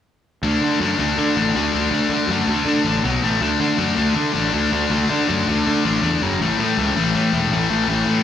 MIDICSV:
0, 0, Header, 1, 3, 480
1, 0, Start_track
1, 0, Tempo, 372208
1, 564, Time_signature, 4, 2, 24, 8
1, 10615, End_track
2, 0, Start_track
2, 0, Title_t, "Overdriven electric guitar"
2, 0, Program_c, 0, 29
2, 557, Note_on_c, 0, 50, 82
2, 560, Note_on_c, 0, 57, 83
2, 567, Note_on_c, 0, 62, 96
2, 810, Note_off_c, 0, 50, 0
2, 815, Note_on_c, 0, 50, 77
2, 820, Note_off_c, 0, 57, 0
2, 825, Note_off_c, 0, 62, 0
2, 825, Note_on_c, 0, 57, 81
2, 830, Note_on_c, 0, 62, 80
2, 1025, Note_off_c, 0, 50, 0
2, 1033, Note_off_c, 0, 62, 0
2, 1034, Note_off_c, 0, 57, 0
2, 1041, Note_on_c, 0, 50, 93
2, 1049, Note_on_c, 0, 62, 98
2, 1050, Note_on_c, 0, 57, 97
2, 1262, Note_off_c, 0, 50, 0
2, 1270, Note_off_c, 0, 57, 0
2, 1273, Note_off_c, 0, 62, 0
2, 1278, Note_on_c, 0, 50, 83
2, 1286, Note_on_c, 0, 57, 86
2, 1289, Note_on_c, 0, 62, 96
2, 1500, Note_off_c, 0, 50, 0
2, 1510, Note_off_c, 0, 62, 0
2, 1515, Note_off_c, 0, 57, 0
2, 1515, Note_on_c, 0, 50, 80
2, 1526, Note_on_c, 0, 62, 98
2, 1530, Note_on_c, 0, 57, 97
2, 1740, Note_off_c, 0, 50, 0
2, 1751, Note_off_c, 0, 62, 0
2, 1754, Note_off_c, 0, 57, 0
2, 1755, Note_on_c, 0, 50, 73
2, 1766, Note_on_c, 0, 62, 90
2, 1769, Note_on_c, 0, 57, 84
2, 1988, Note_off_c, 0, 50, 0
2, 1994, Note_off_c, 0, 57, 0
2, 1999, Note_off_c, 0, 62, 0
2, 2004, Note_on_c, 0, 50, 90
2, 2010, Note_on_c, 0, 57, 101
2, 2014, Note_on_c, 0, 62, 103
2, 2232, Note_off_c, 0, 50, 0
2, 2240, Note_off_c, 0, 57, 0
2, 2245, Note_off_c, 0, 62, 0
2, 2247, Note_on_c, 0, 50, 80
2, 2255, Note_on_c, 0, 57, 79
2, 2261, Note_on_c, 0, 62, 81
2, 2480, Note_off_c, 0, 50, 0
2, 2482, Note_off_c, 0, 57, 0
2, 2492, Note_off_c, 0, 62, 0
2, 2496, Note_on_c, 0, 50, 76
2, 2497, Note_on_c, 0, 57, 93
2, 2507, Note_on_c, 0, 62, 103
2, 2722, Note_off_c, 0, 50, 0
2, 2734, Note_off_c, 0, 57, 0
2, 2737, Note_on_c, 0, 50, 80
2, 2739, Note_off_c, 0, 62, 0
2, 2749, Note_on_c, 0, 57, 82
2, 2755, Note_on_c, 0, 62, 85
2, 2963, Note_off_c, 0, 50, 0
2, 2967, Note_off_c, 0, 57, 0
2, 2971, Note_off_c, 0, 62, 0
2, 2979, Note_on_c, 0, 50, 95
2, 2983, Note_on_c, 0, 57, 98
2, 2986, Note_on_c, 0, 62, 85
2, 3210, Note_off_c, 0, 50, 0
2, 3216, Note_off_c, 0, 57, 0
2, 3221, Note_off_c, 0, 62, 0
2, 3225, Note_on_c, 0, 50, 86
2, 3231, Note_on_c, 0, 57, 88
2, 3236, Note_on_c, 0, 62, 88
2, 3439, Note_off_c, 0, 50, 0
2, 3442, Note_off_c, 0, 57, 0
2, 3448, Note_off_c, 0, 62, 0
2, 3454, Note_on_c, 0, 50, 83
2, 3457, Note_on_c, 0, 57, 100
2, 3463, Note_on_c, 0, 62, 99
2, 3677, Note_off_c, 0, 50, 0
2, 3680, Note_off_c, 0, 57, 0
2, 3684, Note_off_c, 0, 62, 0
2, 3693, Note_on_c, 0, 50, 82
2, 3695, Note_on_c, 0, 57, 79
2, 3699, Note_on_c, 0, 62, 96
2, 3911, Note_off_c, 0, 50, 0
2, 3916, Note_off_c, 0, 57, 0
2, 3916, Note_on_c, 0, 47, 98
2, 3917, Note_off_c, 0, 62, 0
2, 3921, Note_on_c, 0, 54, 101
2, 3922, Note_on_c, 0, 59, 117
2, 4146, Note_off_c, 0, 47, 0
2, 4149, Note_off_c, 0, 54, 0
2, 4150, Note_off_c, 0, 59, 0
2, 4167, Note_on_c, 0, 45, 90
2, 4173, Note_on_c, 0, 52, 89
2, 4182, Note_on_c, 0, 57, 105
2, 4392, Note_off_c, 0, 45, 0
2, 4395, Note_off_c, 0, 52, 0
2, 4407, Note_off_c, 0, 57, 0
2, 4407, Note_on_c, 0, 50, 86
2, 4410, Note_on_c, 0, 57, 88
2, 4412, Note_on_c, 0, 62, 101
2, 4640, Note_off_c, 0, 50, 0
2, 4644, Note_off_c, 0, 57, 0
2, 4645, Note_on_c, 0, 50, 76
2, 4646, Note_off_c, 0, 62, 0
2, 4649, Note_on_c, 0, 57, 79
2, 4651, Note_on_c, 0, 62, 90
2, 4862, Note_off_c, 0, 50, 0
2, 4867, Note_on_c, 0, 50, 89
2, 4871, Note_off_c, 0, 57, 0
2, 4876, Note_on_c, 0, 57, 98
2, 4877, Note_off_c, 0, 62, 0
2, 4882, Note_on_c, 0, 62, 100
2, 5089, Note_off_c, 0, 50, 0
2, 5095, Note_off_c, 0, 62, 0
2, 5099, Note_off_c, 0, 57, 0
2, 5105, Note_on_c, 0, 50, 77
2, 5111, Note_on_c, 0, 62, 92
2, 5114, Note_on_c, 0, 57, 90
2, 5332, Note_off_c, 0, 50, 0
2, 5341, Note_off_c, 0, 57, 0
2, 5346, Note_off_c, 0, 62, 0
2, 5348, Note_on_c, 0, 50, 95
2, 5356, Note_on_c, 0, 57, 94
2, 5362, Note_on_c, 0, 62, 102
2, 5565, Note_off_c, 0, 50, 0
2, 5568, Note_off_c, 0, 57, 0
2, 5570, Note_off_c, 0, 62, 0
2, 5580, Note_on_c, 0, 50, 92
2, 5584, Note_on_c, 0, 57, 86
2, 5586, Note_on_c, 0, 62, 101
2, 5821, Note_off_c, 0, 50, 0
2, 5827, Note_off_c, 0, 57, 0
2, 5834, Note_off_c, 0, 62, 0
2, 5837, Note_on_c, 0, 50, 94
2, 5842, Note_on_c, 0, 57, 96
2, 5850, Note_on_c, 0, 62, 104
2, 6063, Note_off_c, 0, 50, 0
2, 6076, Note_off_c, 0, 57, 0
2, 6076, Note_off_c, 0, 62, 0
2, 6078, Note_on_c, 0, 50, 73
2, 6091, Note_on_c, 0, 57, 86
2, 6091, Note_on_c, 0, 62, 82
2, 6314, Note_off_c, 0, 50, 0
2, 6319, Note_off_c, 0, 57, 0
2, 6320, Note_off_c, 0, 62, 0
2, 6329, Note_on_c, 0, 50, 91
2, 6335, Note_on_c, 0, 57, 105
2, 6336, Note_on_c, 0, 62, 101
2, 6549, Note_off_c, 0, 50, 0
2, 6550, Note_off_c, 0, 57, 0
2, 6561, Note_off_c, 0, 62, 0
2, 6565, Note_on_c, 0, 50, 77
2, 6566, Note_on_c, 0, 57, 77
2, 6577, Note_on_c, 0, 62, 86
2, 6790, Note_off_c, 0, 50, 0
2, 6799, Note_off_c, 0, 57, 0
2, 6801, Note_off_c, 0, 62, 0
2, 6805, Note_on_c, 0, 50, 97
2, 6815, Note_on_c, 0, 57, 96
2, 6816, Note_on_c, 0, 62, 91
2, 7053, Note_off_c, 0, 50, 0
2, 7062, Note_off_c, 0, 62, 0
2, 7064, Note_off_c, 0, 57, 0
2, 7068, Note_on_c, 0, 50, 95
2, 7077, Note_on_c, 0, 62, 95
2, 7079, Note_on_c, 0, 57, 78
2, 7285, Note_off_c, 0, 50, 0
2, 7290, Note_off_c, 0, 57, 0
2, 7292, Note_off_c, 0, 62, 0
2, 7301, Note_on_c, 0, 50, 80
2, 7305, Note_on_c, 0, 57, 96
2, 7307, Note_on_c, 0, 62, 94
2, 7523, Note_off_c, 0, 50, 0
2, 7524, Note_off_c, 0, 57, 0
2, 7529, Note_off_c, 0, 62, 0
2, 7539, Note_on_c, 0, 50, 83
2, 7539, Note_on_c, 0, 57, 89
2, 7544, Note_on_c, 0, 62, 87
2, 7754, Note_off_c, 0, 50, 0
2, 7760, Note_off_c, 0, 57, 0
2, 7763, Note_off_c, 0, 62, 0
2, 7770, Note_on_c, 0, 50, 95
2, 7775, Note_on_c, 0, 57, 92
2, 7779, Note_on_c, 0, 62, 108
2, 7993, Note_off_c, 0, 50, 0
2, 7996, Note_off_c, 0, 57, 0
2, 7997, Note_off_c, 0, 62, 0
2, 8020, Note_on_c, 0, 42, 83
2, 8023, Note_on_c, 0, 54, 94
2, 8024, Note_on_c, 0, 49, 94
2, 8238, Note_off_c, 0, 42, 0
2, 8240, Note_off_c, 0, 49, 0
2, 8240, Note_off_c, 0, 54, 0
2, 8267, Note_on_c, 0, 45, 84
2, 8274, Note_on_c, 0, 52, 83
2, 8278, Note_on_c, 0, 57, 90
2, 8496, Note_off_c, 0, 45, 0
2, 8501, Note_on_c, 0, 45, 75
2, 8502, Note_off_c, 0, 52, 0
2, 8506, Note_off_c, 0, 57, 0
2, 8507, Note_on_c, 0, 52, 83
2, 8511, Note_on_c, 0, 57, 93
2, 8741, Note_off_c, 0, 45, 0
2, 8745, Note_off_c, 0, 52, 0
2, 8746, Note_on_c, 0, 45, 85
2, 8748, Note_off_c, 0, 57, 0
2, 8751, Note_on_c, 0, 52, 96
2, 8753, Note_on_c, 0, 57, 98
2, 8965, Note_off_c, 0, 45, 0
2, 8970, Note_on_c, 0, 45, 83
2, 8971, Note_off_c, 0, 52, 0
2, 8975, Note_off_c, 0, 57, 0
2, 8976, Note_on_c, 0, 52, 90
2, 8980, Note_on_c, 0, 57, 95
2, 9200, Note_off_c, 0, 45, 0
2, 9201, Note_off_c, 0, 52, 0
2, 9215, Note_on_c, 0, 45, 94
2, 9217, Note_on_c, 0, 52, 99
2, 9220, Note_off_c, 0, 57, 0
2, 9226, Note_on_c, 0, 57, 102
2, 9442, Note_off_c, 0, 45, 0
2, 9449, Note_off_c, 0, 52, 0
2, 9457, Note_on_c, 0, 45, 87
2, 9462, Note_off_c, 0, 57, 0
2, 9465, Note_on_c, 0, 52, 78
2, 9467, Note_on_c, 0, 57, 87
2, 9685, Note_off_c, 0, 45, 0
2, 9689, Note_off_c, 0, 52, 0
2, 9699, Note_off_c, 0, 57, 0
2, 9701, Note_on_c, 0, 45, 86
2, 9704, Note_on_c, 0, 52, 94
2, 9704, Note_on_c, 0, 57, 101
2, 9908, Note_off_c, 0, 45, 0
2, 9917, Note_off_c, 0, 52, 0
2, 9924, Note_on_c, 0, 45, 81
2, 9929, Note_off_c, 0, 57, 0
2, 9932, Note_on_c, 0, 52, 82
2, 9934, Note_on_c, 0, 57, 87
2, 10150, Note_off_c, 0, 45, 0
2, 10153, Note_off_c, 0, 52, 0
2, 10166, Note_on_c, 0, 45, 83
2, 10169, Note_on_c, 0, 52, 99
2, 10171, Note_off_c, 0, 57, 0
2, 10176, Note_on_c, 0, 57, 91
2, 10406, Note_off_c, 0, 45, 0
2, 10410, Note_off_c, 0, 52, 0
2, 10422, Note_on_c, 0, 45, 76
2, 10425, Note_on_c, 0, 52, 86
2, 10427, Note_off_c, 0, 57, 0
2, 10432, Note_on_c, 0, 57, 86
2, 10615, Note_off_c, 0, 45, 0
2, 10615, Note_off_c, 0, 52, 0
2, 10615, Note_off_c, 0, 57, 0
2, 10615, End_track
3, 0, Start_track
3, 0, Title_t, "Picked electric bass"
3, 0, Program_c, 1, 34
3, 550, Note_on_c, 1, 38, 89
3, 724, Note_off_c, 1, 38, 0
3, 789, Note_on_c, 1, 50, 79
3, 963, Note_off_c, 1, 50, 0
3, 1032, Note_on_c, 1, 42, 78
3, 1206, Note_off_c, 1, 42, 0
3, 1273, Note_on_c, 1, 38, 73
3, 1446, Note_off_c, 1, 38, 0
3, 1524, Note_on_c, 1, 50, 90
3, 1694, Note_off_c, 1, 50, 0
3, 1764, Note_on_c, 1, 33, 80
3, 1933, Note_off_c, 1, 33, 0
3, 2002, Note_on_c, 1, 38, 92
3, 2172, Note_off_c, 1, 38, 0
3, 2246, Note_on_c, 1, 38, 78
3, 2415, Note_off_c, 1, 38, 0
3, 2464, Note_on_c, 1, 38, 88
3, 2640, Note_off_c, 1, 38, 0
3, 2701, Note_on_c, 1, 50, 84
3, 2879, Note_off_c, 1, 50, 0
3, 2938, Note_on_c, 1, 42, 82
3, 3117, Note_off_c, 1, 42, 0
3, 3183, Note_on_c, 1, 38, 81
3, 3360, Note_off_c, 1, 38, 0
3, 3420, Note_on_c, 1, 50, 100
3, 3598, Note_off_c, 1, 50, 0
3, 3668, Note_on_c, 1, 33, 84
3, 3843, Note_off_c, 1, 33, 0
3, 3911, Note_on_c, 1, 35, 90
3, 4085, Note_off_c, 1, 35, 0
3, 4157, Note_on_c, 1, 33, 83
3, 4329, Note_off_c, 1, 33, 0
3, 4392, Note_on_c, 1, 38, 92
3, 4566, Note_off_c, 1, 38, 0
3, 4640, Note_on_c, 1, 50, 84
3, 4811, Note_off_c, 1, 50, 0
3, 4878, Note_on_c, 1, 42, 78
3, 5049, Note_off_c, 1, 42, 0
3, 5121, Note_on_c, 1, 38, 80
3, 5292, Note_off_c, 1, 38, 0
3, 5369, Note_on_c, 1, 50, 99
3, 5537, Note_off_c, 1, 50, 0
3, 5606, Note_on_c, 1, 33, 83
3, 5775, Note_off_c, 1, 33, 0
3, 5843, Note_on_c, 1, 38, 88
3, 6013, Note_off_c, 1, 38, 0
3, 6090, Note_on_c, 1, 38, 83
3, 6257, Note_off_c, 1, 38, 0
3, 6320, Note_on_c, 1, 38, 86
3, 6491, Note_off_c, 1, 38, 0
3, 6581, Note_on_c, 1, 50, 83
3, 6744, Note_off_c, 1, 50, 0
3, 6824, Note_on_c, 1, 42, 86
3, 6987, Note_off_c, 1, 42, 0
3, 7062, Note_on_c, 1, 38, 77
3, 7225, Note_off_c, 1, 38, 0
3, 7314, Note_on_c, 1, 50, 94
3, 7473, Note_off_c, 1, 50, 0
3, 7545, Note_on_c, 1, 33, 82
3, 7707, Note_off_c, 1, 33, 0
3, 7764, Note_on_c, 1, 40, 88
3, 7933, Note_off_c, 1, 40, 0
3, 8017, Note_on_c, 1, 30, 85
3, 8182, Note_off_c, 1, 30, 0
3, 8248, Note_on_c, 1, 33, 80
3, 8416, Note_off_c, 1, 33, 0
3, 8494, Note_on_c, 1, 45, 77
3, 8660, Note_off_c, 1, 45, 0
3, 8736, Note_on_c, 1, 37, 82
3, 8901, Note_off_c, 1, 37, 0
3, 8986, Note_on_c, 1, 33, 77
3, 9148, Note_off_c, 1, 33, 0
3, 9222, Note_on_c, 1, 45, 94
3, 9385, Note_off_c, 1, 45, 0
3, 9451, Note_on_c, 1, 28, 81
3, 9618, Note_off_c, 1, 28, 0
3, 9693, Note_on_c, 1, 33, 90
3, 9859, Note_off_c, 1, 33, 0
3, 9930, Note_on_c, 1, 33, 79
3, 10097, Note_off_c, 1, 33, 0
3, 10162, Note_on_c, 1, 33, 89
3, 10332, Note_off_c, 1, 33, 0
3, 10400, Note_on_c, 1, 45, 86
3, 10570, Note_off_c, 1, 45, 0
3, 10615, End_track
0, 0, End_of_file